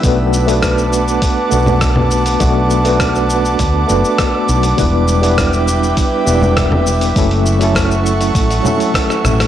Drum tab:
HH |o--oo---o---o--o|o--oo---o---o--o|o--oo---o---o--o|oo-oo--ooo-oo--o|
SH |x-xxxxxxx-xxx-xx|x-xxxxxxx-xxx-xx|x-xxxxxxx-xxx-xx|x-xxxxxxxxxxxxxx|
SD |----r-------r---|----r-------r---|----r-------r---|----r-------rrrr|
CG |-----------O-O--|----------------|-----------O-O--|----------O---O-|
BD |o---o---o---o---|o---o---o---o---|o---o---o---o---|o---o---o---o---|